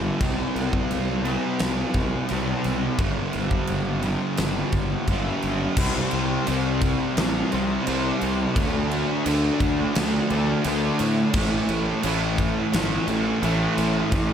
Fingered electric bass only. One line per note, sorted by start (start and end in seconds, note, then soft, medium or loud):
0.21 0.43 C2 medium
0.56 0.78 C2 medium
0.91 1.36 C2 medium
1.60 1.83 C2 medium
1.94 2.17 C2 medium
2.31 2.53 C2 medium
2.65 2.88 C2 medium
2.99 3.21 G1 medium
3.35 3.58 G1 medium
3.70 4.15 G1 medium
4.39 4.61 G1 medium
4.73 4.95 G1 medium
5.08 5.30 G1 medium
5.44 5.66 G1 medium
5.77 6.01 C2 medium
6.13 6.36 C2 medium
6.48 6.94 C2 loud
7.17 7.41 A1 medium
7.53 7.76 C2 medium
7.88 8.11 C2 loud
8.22 8.45 C2 medium
8.56 9.03 D2 medium
9.26 9.49 D2 medium
9.60 9.84 D2 medium
9.96 10.19 D2 medium
10.31 10.54 D2 medium
10.65 10.88 D2 medium
11.00 11.23 A2 medium
11.34 11.57 A1 medium
11.69 11.92 A1 medium
12.04 12.50 A1 loud
12.74 12.97 G1 medium
13.08 13.31 A1 medium
13.42 13.66 A1 loud
13.78 14.01 A1 medium
14.12 14.33 A1 loud